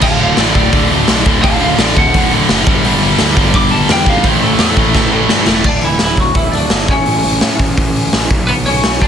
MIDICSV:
0, 0, Header, 1, 5, 480
1, 0, Start_track
1, 0, Tempo, 353149
1, 22, Time_signature, 4, 2, 24, 8
1, 12337, End_track
2, 0, Start_track
2, 0, Title_t, "Lead electric guitar"
2, 0, Program_c, 0, 29
2, 32, Note_on_c, 0, 77, 92
2, 47, Note_on_c, 0, 81, 106
2, 266, Note_off_c, 0, 77, 0
2, 266, Note_off_c, 0, 81, 0
2, 266, Note_on_c, 0, 72, 92
2, 286, Note_on_c, 0, 77, 100
2, 486, Note_off_c, 0, 72, 0
2, 506, Note_off_c, 0, 77, 0
2, 524, Note_on_c, 0, 69, 87
2, 547, Note_on_c, 0, 74, 96
2, 719, Note_off_c, 0, 74, 0
2, 735, Note_off_c, 0, 69, 0
2, 735, Note_on_c, 0, 74, 98
2, 1201, Note_off_c, 0, 74, 0
2, 1940, Note_on_c, 0, 77, 99
2, 1953, Note_on_c, 0, 81, 119
2, 2176, Note_off_c, 0, 77, 0
2, 2176, Note_off_c, 0, 81, 0
2, 2176, Note_on_c, 0, 72, 85
2, 2193, Note_on_c, 0, 77, 92
2, 2397, Note_off_c, 0, 72, 0
2, 2416, Note_off_c, 0, 77, 0
2, 2430, Note_on_c, 0, 69, 89
2, 2433, Note_on_c, 0, 74, 101
2, 2645, Note_off_c, 0, 69, 0
2, 2653, Note_off_c, 0, 74, 0
2, 2691, Note_on_c, 0, 78, 114
2, 3136, Note_off_c, 0, 78, 0
2, 4839, Note_on_c, 0, 86, 118
2, 5045, Note_on_c, 0, 81, 93
2, 5055, Note_off_c, 0, 86, 0
2, 5277, Note_off_c, 0, 81, 0
2, 5324, Note_on_c, 0, 79, 98
2, 5537, Note_off_c, 0, 79, 0
2, 5564, Note_on_c, 0, 77, 104
2, 5777, Note_off_c, 0, 77, 0
2, 5785, Note_on_c, 0, 72, 103
2, 6007, Note_off_c, 0, 72, 0
2, 6028, Note_on_c, 0, 69, 101
2, 6231, Note_off_c, 0, 69, 0
2, 6247, Note_on_c, 0, 69, 106
2, 7176, Note_off_c, 0, 69, 0
2, 7696, Note_on_c, 0, 74, 64
2, 7729, Note_on_c, 0, 62, 78
2, 7913, Note_on_c, 0, 52, 60
2, 7914, Note_off_c, 0, 74, 0
2, 7931, Note_off_c, 0, 62, 0
2, 7941, Note_on_c, 0, 64, 83
2, 8142, Note_off_c, 0, 52, 0
2, 8169, Note_on_c, 0, 52, 62
2, 8180, Note_off_c, 0, 64, 0
2, 8203, Note_on_c, 0, 64, 88
2, 8371, Note_off_c, 0, 52, 0
2, 8376, Note_on_c, 0, 54, 60
2, 8426, Note_off_c, 0, 64, 0
2, 8431, Note_on_c, 0, 66, 72
2, 8612, Note_off_c, 0, 54, 0
2, 8617, Note_on_c, 0, 52, 69
2, 8649, Note_off_c, 0, 66, 0
2, 8655, Note_on_c, 0, 64, 86
2, 8855, Note_off_c, 0, 52, 0
2, 8855, Note_on_c, 0, 74, 61
2, 8896, Note_off_c, 0, 64, 0
2, 8901, Note_on_c, 0, 62, 76
2, 9318, Note_off_c, 0, 74, 0
2, 9379, Note_on_c, 0, 73, 60
2, 9389, Note_on_c, 0, 61, 84
2, 9391, Note_off_c, 0, 62, 0
2, 11248, Note_off_c, 0, 73, 0
2, 11253, Note_off_c, 0, 61, 0
2, 11511, Note_on_c, 0, 71, 67
2, 11532, Note_on_c, 0, 59, 91
2, 11580, Note_off_c, 0, 71, 0
2, 11600, Note_off_c, 0, 59, 0
2, 11770, Note_on_c, 0, 73, 73
2, 11779, Note_on_c, 0, 61, 91
2, 12222, Note_off_c, 0, 73, 0
2, 12264, Note_on_c, 0, 74, 71
2, 12265, Note_off_c, 0, 61, 0
2, 12270, Note_on_c, 0, 62, 82
2, 12337, Note_off_c, 0, 62, 0
2, 12337, Note_off_c, 0, 74, 0
2, 12337, End_track
3, 0, Start_track
3, 0, Title_t, "Overdriven electric guitar"
3, 0, Program_c, 1, 29
3, 27, Note_on_c, 1, 38, 94
3, 32, Note_on_c, 1, 45, 106
3, 42, Note_on_c, 1, 50, 110
3, 254, Note_off_c, 1, 38, 0
3, 258, Note_off_c, 1, 45, 0
3, 260, Note_on_c, 1, 38, 88
3, 274, Note_on_c, 1, 45, 95
3, 278, Note_off_c, 1, 50, 0
3, 283, Note_on_c, 1, 50, 103
3, 504, Note_off_c, 1, 45, 0
3, 506, Note_off_c, 1, 38, 0
3, 511, Note_on_c, 1, 38, 80
3, 516, Note_off_c, 1, 50, 0
3, 521, Note_on_c, 1, 45, 81
3, 522, Note_on_c, 1, 50, 96
3, 735, Note_off_c, 1, 38, 0
3, 747, Note_off_c, 1, 45, 0
3, 749, Note_off_c, 1, 50, 0
3, 751, Note_on_c, 1, 38, 86
3, 763, Note_on_c, 1, 45, 90
3, 766, Note_on_c, 1, 50, 93
3, 984, Note_off_c, 1, 38, 0
3, 984, Note_off_c, 1, 45, 0
3, 997, Note_off_c, 1, 50, 0
3, 1000, Note_on_c, 1, 38, 104
3, 1001, Note_on_c, 1, 45, 97
3, 1014, Note_on_c, 1, 50, 116
3, 1229, Note_off_c, 1, 38, 0
3, 1237, Note_off_c, 1, 45, 0
3, 1241, Note_off_c, 1, 50, 0
3, 1245, Note_on_c, 1, 38, 86
3, 1253, Note_on_c, 1, 45, 96
3, 1257, Note_on_c, 1, 50, 97
3, 1451, Note_off_c, 1, 38, 0
3, 1463, Note_off_c, 1, 50, 0
3, 1465, Note_off_c, 1, 45, 0
3, 1467, Note_on_c, 1, 38, 83
3, 1479, Note_on_c, 1, 50, 100
3, 1481, Note_on_c, 1, 45, 87
3, 1707, Note_off_c, 1, 38, 0
3, 1712, Note_off_c, 1, 45, 0
3, 1714, Note_off_c, 1, 50, 0
3, 1723, Note_on_c, 1, 38, 88
3, 1728, Note_on_c, 1, 45, 96
3, 1730, Note_on_c, 1, 50, 105
3, 1938, Note_off_c, 1, 38, 0
3, 1947, Note_off_c, 1, 45, 0
3, 1952, Note_off_c, 1, 50, 0
3, 1955, Note_on_c, 1, 38, 109
3, 1964, Note_on_c, 1, 45, 105
3, 1969, Note_on_c, 1, 50, 103
3, 2175, Note_off_c, 1, 38, 0
3, 2185, Note_off_c, 1, 45, 0
3, 2191, Note_on_c, 1, 38, 74
3, 2195, Note_off_c, 1, 50, 0
3, 2202, Note_on_c, 1, 45, 99
3, 2212, Note_on_c, 1, 50, 102
3, 2424, Note_off_c, 1, 38, 0
3, 2440, Note_on_c, 1, 38, 85
3, 2445, Note_off_c, 1, 45, 0
3, 2450, Note_off_c, 1, 50, 0
3, 2462, Note_on_c, 1, 45, 90
3, 2466, Note_on_c, 1, 50, 89
3, 2668, Note_off_c, 1, 38, 0
3, 2675, Note_off_c, 1, 45, 0
3, 2681, Note_off_c, 1, 50, 0
3, 2684, Note_on_c, 1, 38, 81
3, 2691, Note_on_c, 1, 45, 92
3, 2697, Note_on_c, 1, 50, 93
3, 2899, Note_off_c, 1, 38, 0
3, 2910, Note_off_c, 1, 45, 0
3, 2915, Note_on_c, 1, 38, 91
3, 2922, Note_off_c, 1, 50, 0
3, 2926, Note_on_c, 1, 45, 107
3, 2938, Note_on_c, 1, 50, 108
3, 3149, Note_off_c, 1, 38, 0
3, 3157, Note_off_c, 1, 45, 0
3, 3158, Note_off_c, 1, 50, 0
3, 3165, Note_on_c, 1, 38, 88
3, 3173, Note_on_c, 1, 45, 89
3, 3175, Note_on_c, 1, 50, 107
3, 3379, Note_off_c, 1, 38, 0
3, 3383, Note_off_c, 1, 45, 0
3, 3392, Note_off_c, 1, 50, 0
3, 3395, Note_on_c, 1, 38, 88
3, 3399, Note_on_c, 1, 45, 91
3, 3408, Note_on_c, 1, 50, 97
3, 3607, Note_off_c, 1, 38, 0
3, 3609, Note_off_c, 1, 45, 0
3, 3614, Note_off_c, 1, 50, 0
3, 3634, Note_on_c, 1, 43, 110
3, 3635, Note_on_c, 1, 50, 113
3, 3641, Note_on_c, 1, 55, 118
3, 3857, Note_off_c, 1, 43, 0
3, 3870, Note_off_c, 1, 50, 0
3, 3873, Note_on_c, 1, 43, 101
3, 3875, Note_off_c, 1, 55, 0
3, 3886, Note_on_c, 1, 50, 102
3, 3891, Note_on_c, 1, 55, 111
3, 4082, Note_off_c, 1, 43, 0
3, 4087, Note_off_c, 1, 50, 0
3, 4098, Note_on_c, 1, 43, 83
3, 4099, Note_off_c, 1, 55, 0
3, 4103, Note_on_c, 1, 50, 88
3, 4115, Note_on_c, 1, 55, 92
3, 4312, Note_off_c, 1, 43, 0
3, 4313, Note_off_c, 1, 50, 0
3, 4325, Note_off_c, 1, 55, 0
3, 4328, Note_on_c, 1, 43, 91
3, 4329, Note_on_c, 1, 50, 95
3, 4341, Note_on_c, 1, 55, 99
3, 4555, Note_off_c, 1, 43, 0
3, 4562, Note_off_c, 1, 50, 0
3, 4565, Note_off_c, 1, 55, 0
3, 4571, Note_on_c, 1, 43, 93
3, 4578, Note_on_c, 1, 50, 86
3, 4581, Note_on_c, 1, 55, 91
3, 4801, Note_off_c, 1, 43, 0
3, 4810, Note_off_c, 1, 50, 0
3, 4812, Note_off_c, 1, 55, 0
3, 4817, Note_on_c, 1, 43, 110
3, 4826, Note_on_c, 1, 50, 107
3, 4828, Note_on_c, 1, 55, 101
3, 5028, Note_off_c, 1, 43, 0
3, 5033, Note_off_c, 1, 50, 0
3, 5035, Note_off_c, 1, 55, 0
3, 5044, Note_on_c, 1, 43, 89
3, 5049, Note_on_c, 1, 50, 91
3, 5051, Note_on_c, 1, 55, 104
3, 5259, Note_off_c, 1, 43, 0
3, 5272, Note_off_c, 1, 50, 0
3, 5275, Note_on_c, 1, 43, 86
3, 5283, Note_off_c, 1, 55, 0
3, 5288, Note_on_c, 1, 50, 97
3, 5299, Note_on_c, 1, 55, 102
3, 5503, Note_off_c, 1, 43, 0
3, 5514, Note_off_c, 1, 50, 0
3, 5517, Note_off_c, 1, 55, 0
3, 5520, Note_on_c, 1, 43, 96
3, 5531, Note_on_c, 1, 50, 99
3, 5534, Note_on_c, 1, 55, 101
3, 5745, Note_off_c, 1, 43, 0
3, 5749, Note_off_c, 1, 50, 0
3, 5751, Note_on_c, 1, 45, 100
3, 5754, Note_off_c, 1, 55, 0
3, 5754, Note_on_c, 1, 52, 110
3, 5762, Note_on_c, 1, 57, 114
3, 5969, Note_off_c, 1, 52, 0
3, 5972, Note_off_c, 1, 45, 0
3, 5978, Note_off_c, 1, 57, 0
3, 5986, Note_on_c, 1, 52, 86
3, 5988, Note_on_c, 1, 45, 90
3, 5994, Note_on_c, 1, 57, 89
3, 6221, Note_off_c, 1, 45, 0
3, 6223, Note_off_c, 1, 52, 0
3, 6235, Note_off_c, 1, 57, 0
3, 6237, Note_on_c, 1, 45, 78
3, 6239, Note_on_c, 1, 52, 78
3, 6251, Note_on_c, 1, 57, 95
3, 6472, Note_off_c, 1, 45, 0
3, 6483, Note_off_c, 1, 52, 0
3, 6484, Note_off_c, 1, 57, 0
3, 6488, Note_on_c, 1, 45, 90
3, 6499, Note_on_c, 1, 52, 89
3, 6501, Note_on_c, 1, 57, 93
3, 6700, Note_off_c, 1, 45, 0
3, 6715, Note_off_c, 1, 57, 0
3, 6716, Note_off_c, 1, 52, 0
3, 6716, Note_on_c, 1, 45, 89
3, 6731, Note_on_c, 1, 57, 112
3, 6732, Note_on_c, 1, 52, 99
3, 6930, Note_off_c, 1, 45, 0
3, 6942, Note_off_c, 1, 52, 0
3, 6946, Note_on_c, 1, 45, 87
3, 6947, Note_off_c, 1, 57, 0
3, 6958, Note_on_c, 1, 52, 87
3, 6963, Note_on_c, 1, 57, 93
3, 7169, Note_off_c, 1, 45, 0
3, 7178, Note_off_c, 1, 52, 0
3, 7182, Note_off_c, 1, 57, 0
3, 7185, Note_on_c, 1, 45, 83
3, 7194, Note_on_c, 1, 52, 86
3, 7199, Note_on_c, 1, 57, 88
3, 7411, Note_off_c, 1, 45, 0
3, 7416, Note_off_c, 1, 52, 0
3, 7417, Note_off_c, 1, 57, 0
3, 7427, Note_on_c, 1, 45, 99
3, 7432, Note_on_c, 1, 52, 97
3, 7433, Note_on_c, 1, 57, 92
3, 7661, Note_off_c, 1, 45, 0
3, 7663, Note_off_c, 1, 52, 0
3, 7664, Note_off_c, 1, 57, 0
3, 12337, End_track
4, 0, Start_track
4, 0, Title_t, "Picked electric bass"
4, 0, Program_c, 2, 34
4, 36, Note_on_c, 2, 26, 93
4, 432, Note_off_c, 2, 26, 0
4, 503, Note_on_c, 2, 33, 87
4, 703, Note_off_c, 2, 33, 0
4, 750, Note_on_c, 2, 26, 91
4, 947, Note_off_c, 2, 26, 0
4, 990, Note_on_c, 2, 26, 100
4, 1387, Note_off_c, 2, 26, 0
4, 1477, Note_on_c, 2, 35, 99
4, 1669, Note_off_c, 2, 35, 0
4, 1711, Note_on_c, 2, 26, 95
4, 1905, Note_off_c, 2, 26, 0
4, 1957, Note_on_c, 2, 26, 98
4, 2350, Note_off_c, 2, 26, 0
4, 2421, Note_on_c, 2, 33, 93
4, 2619, Note_off_c, 2, 33, 0
4, 2676, Note_on_c, 2, 26, 96
4, 2867, Note_off_c, 2, 26, 0
4, 2918, Note_on_c, 2, 26, 95
4, 3309, Note_off_c, 2, 26, 0
4, 3401, Note_on_c, 2, 30, 95
4, 3589, Note_off_c, 2, 30, 0
4, 3633, Note_on_c, 2, 31, 94
4, 3824, Note_off_c, 2, 31, 0
4, 3877, Note_on_c, 2, 31, 97
4, 4267, Note_off_c, 2, 31, 0
4, 4353, Note_on_c, 2, 38, 98
4, 4543, Note_off_c, 2, 38, 0
4, 4574, Note_on_c, 2, 31, 100
4, 4772, Note_off_c, 2, 31, 0
4, 4808, Note_on_c, 2, 31, 99
4, 5210, Note_off_c, 2, 31, 0
4, 5295, Note_on_c, 2, 40, 100
4, 5492, Note_off_c, 2, 40, 0
4, 5517, Note_on_c, 2, 32, 95
4, 5721, Note_off_c, 2, 32, 0
4, 5765, Note_on_c, 2, 33, 98
4, 6168, Note_off_c, 2, 33, 0
4, 6235, Note_on_c, 2, 40, 91
4, 6440, Note_off_c, 2, 40, 0
4, 6480, Note_on_c, 2, 33, 88
4, 6683, Note_off_c, 2, 33, 0
4, 6722, Note_on_c, 2, 33, 100
4, 7126, Note_off_c, 2, 33, 0
4, 7195, Note_on_c, 2, 43, 92
4, 7400, Note_off_c, 2, 43, 0
4, 7429, Note_on_c, 2, 28, 87
4, 7637, Note_off_c, 2, 28, 0
4, 7675, Note_on_c, 2, 26, 79
4, 7884, Note_off_c, 2, 26, 0
4, 7904, Note_on_c, 2, 26, 81
4, 8118, Note_off_c, 2, 26, 0
4, 8153, Note_on_c, 2, 26, 79
4, 8568, Note_off_c, 2, 26, 0
4, 8634, Note_on_c, 2, 26, 85
4, 8845, Note_off_c, 2, 26, 0
4, 8873, Note_on_c, 2, 26, 84
4, 9084, Note_off_c, 2, 26, 0
4, 9117, Note_on_c, 2, 31, 90
4, 9328, Note_off_c, 2, 31, 0
4, 9359, Note_on_c, 2, 33, 87
4, 9569, Note_off_c, 2, 33, 0
4, 9606, Note_on_c, 2, 33, 82
4, 9813, Note_off_c, 2, 33, 0
4, 9846, Note_on_c, 2, 33, 82
4, 10054, Note_off_c, 2, 33, 0
4, 10075, Note_on_c, 2, 45, 79
4, 10288, Note_off_c, 2, 45, 0
4, 10326, Note_on_c, 2, 33, 86
4, 10535, Note_off_c, 2, 33, 0
4, 10573, Note_on_c, 2, 33, 90
4, 10985, Note_off_c, 2, 33, 0
4, 11059, Note_on_c, 2, 33, 87
4, 11263, Note_off_c, 2, 33, 0
4, 11289, Note_on_c, 2, 35, 86
4, 11498, Note_off_c, 2, 35, 0
4, 11553, Note_on_c, 2, 35, 89
4, 11752, Note_off_c, 2, 35, 0
4, 11794, Note_on_c, 2, 35, 88
4, 11993, Note_off_c, 2, 35, 0
4, 12033, Note_on_c, 2, 35, 80
4, 12337, Note_off_c, 2, 35, 0
4, 12337, End_track
5, 0, Start_track
5, 0, Title_t, "Drums"
5, 20, Note_on_c, 9, 49, 107
5, 30, Note_on_c, 9, 36, 109
5, 156, Note_off_c, 9, 49, 0
5, 166, Note_off_c, 9, 36, 0
5, 502, Note_on_c, 9, 46, 72
5, 503, Note_on_c, 9, 38, 125
5, 638, Note_off_c, 9, 46, 0
5, 639, Note_off_c, 9, 38, 0
5, 750, Note_on_c, 9, 36, 96
5, 886, Note_off_c, 9, 36, 0
5, 989, Note_on_c, 9, 46, 59
5, 990, Note_on_c, 9, 36, 120
5, 1125, Note_off_c, 9, 46, 0
5, 1126, Note_off_c, 9, 36, 0
5, 1464, Note_on_c, 9, 46, 66
5, 1465, Note_on_c, 9, 38, 116
5, 1600, Note_off_c, 9, 46, 0
5, 1601, Note_off_c, 9, 38, 0
5, 1712, Note_on_c, 9, 36, 104
5, 1848, Note_off_c, 9, 36, 0
5, 1951, Note_on_c, 9, 46, 57
5, 1954, Note_on_c, 9, 36, 116
5, 2087, Note_off_c, 9, 46, 0
5, 2089, Note_off_c, 9, 36, 0
5, 2426, Note_on_c, 9, 46, 68
5, 2428, Note_on_c, 9, 38, 127
5, 2562, Note_off_c, 9, 46, 0
5, 2564, Note_off_c, 9, 38, 0
5, 2672, Note_on_c, 9, 36, 102
5, 2808, Note_off_c, 9, 36, 0
5, 2908, Note_on_c, 9, 46, 70
5, 2913, Note_on_c, 9, 36, 118
5, 3044, Note_off_c, 9, 46, 0
5, 3049, Note_off_c, 9, 36, 0
5, 3385, Note_on_c, 9, 46, 74
5, 3386, Note_on_c, 9, 38, 115
5, 3521, Note_off_c, 9, 46, 0
5, 3522, Note_off_c, 9, 38, 0
5, 3626, Note_on_c, 9, 36, 126
5, 3762, Note_off_c, 9, 36, 0
5, 3864, Note_on_c, 9, 46, 63
5, 4000, Note_off_c, 9, 46, 0
5, 4329, Note_on_c, 9, 46, 74
5, 4330, Note_on_c, 9, 38, 127
5, 4465, Note_off_c, 9, 46, 0
5, 4466, Note_off_c, 9, 38, 0
5, 4578, Note_on_c, 9, 36, 97
5, 4713, Note_off_c, 9, 36, 0
5, 4805, Note_on_c, 9, 46, 64
5, 4811, Note_on_c, 9, 36, 121
5, 4941, Note_off_c, 9, 46, 0
5, 4947, Note_off_c, 9, 36, 0
5, 5289, Note_on_c, 9, 46, 68
5, 5290, Note_on_c, 9, 38, 114
5, 5425, Note_off_c, 9, 46, 0
5, 5426, Note_off_c, 9, 38, 0
5, 5524, Note_on_c, 9, 36, 93
5, 5659, Note_off_c, 9, 36, 0
5, 5754, Note_on_c, 9, 46, 55
5, 5763, Note_on_c, 9, 36, 109
5, 5890, Note_off_c, 9, 46, 0
5, 5899, Note_off_c, 9, 36, 0
5, 6235, Note_on_c, 9, 46, 70
5, 6236, Note_on_c, 9, 38, 120
5, 6370, Note_off_c, 9, 46, 0
5, 6372, Note_off_c, 9, 38, 0
5, 6481, Note_on_c, 9, 36, 98
5, 6617, Note_off_c, 9, 36, 0
5, 6722, Note_on_c, 9, 36, 115
5, 6725, Note_on_c, 9, 38, 70
5, 6858, Note_off_c, 9, 36, 0
5, 6861, Note_off_c, 9, 38, 0
5, 7194, Note_on_c, 9, 38, 99
5, 7330, Note_off_c, 9, 38, 0
5, 7430, Note_on_c, 9, 38, 111
5, 7566, Note_off_c, 9, 38, 0
5, 7668, Note_on_c, 9, 57, 95
5, 7673, Note_on_c, 9, 36, 98
5, 7804, Note_off_c, 9, 57, 0
5, 7809, Note_off_c, 9, 36, 0
5, 7901, Note_on_c, 9, 46, 56
5, 8037, Note_off_c, 9, 46, 0
5, 8141, Note_on_c, 9, 46, 81
5, 8143, Note_on_c, 9, 38, 112
5, 8277, Note_off_c, 9, 46, 0
5, 8278, Note_off_c, 9, 38, 0
5, 8386, Note_on_c, 9, 46, 56
5, 8392, Note_on_c, 9, 36, 81
5, 8522, Note_off_c, 9, 46, 0
5, 8528, Note_off_c, 9, 36, 0
5, 8625, Note_on_c, 9, 46, 71
5, 8633, Note_on_c, 9, 36, 99
5, 8761, Note_off_c, 9, 46, 0
5, 8769, Note_off_c, 9, 36, 0
5, 8879, Note_on_c, 9, 46, 52
5, 9015, Note_off_c, 9, 46, 0
5, 9107, Note_on_c, 9, 46, 69
5, 9108, Note_on_c, 9, 38, 113
5, 9242, Note_off_c, 9, 46, 0
5, 9244, Note_off_c, 9, 38, 0
5, 9357, Note_on_c, 9, 36, 103
5, 9361, Note_on_c, 9, 46, 55
5, 9493, Note_off_c, 9, 36, 0
5, 9496, Note_off_c, 9, 46, 0
5, 9593, Note_on_c, 9, 46, 61
5, 9729, Note_off_c, 9, 46, 0
5, 9828, Note_on_c, 9, 46, 54
5, 9964, Note_off_c, 9, 46, 0
5, 10074, Note_on_c, 9, 46, 79
5, 10075, Note_on_c, 9, 38, 108
5, 10210, Note_off_c, 9, 46, 0
5, 10211, Note_off_c, 9, 38, 0
5, 10323, Note_on_c, 9, 36, 85
5, 10327, Note_on_c, 9, 46, 62
5, 10459, Note_off_c, 9, 36, 0
5, 10462, Note_off_c, 9, 46, 0
5, 10566, Note_on_c, 9, 46, 75
5, 10568, Note_on_c, 9, 36, 108
5, 10702, Note_off_c, 9, 46, 0
5, 10704, Note_off_c, 9, 36, 0
5, 10818, Note_on_c, 9, 46, 57
5, 10954, Note_off_c, 9, 46, 0
5, 11048, Note_on_c, 9, 46, 76
5, 11049, Note_on_c, 9, 38, 108
5, 11184, Note_off_c, 9, 46, 0
5, 11185, Note_off_c, 9, 38, 0
5, 11290, Note_on_c, 9, 36, 107
5, 11290, Note_on_c, 9, 46, 66
5, 11426, Note_off_c, 9, 36, 0
5, 11426, Note_off_c, 9, 46, 0
5, 11530, Note_on_c, 9, 46, 66
5, 11666, Note_off_c, 9, 46, 0
5, 11773, Note_on_c, 9, 46, 56
5, 11908, Note_off_c, 9, 46, 0
5, 12009, Note_on_c, 9, 46, 82
5, 12011, Note_on_c, 9, 38, 115
5, 12145, Note_off_c, 9, 46, 0
5, 12147, Note_off_c, 9, 38, 0
5, 12251, Note_on_c, 9, 46, 55
5, 12254, Note_on_c, 9, 36, 89
5, 12337, Note_off_c, 9, 36, 0
5, 12337, Note_off_c, 9, 46, 0
5, 12337, End_track
0, 0, End_of_file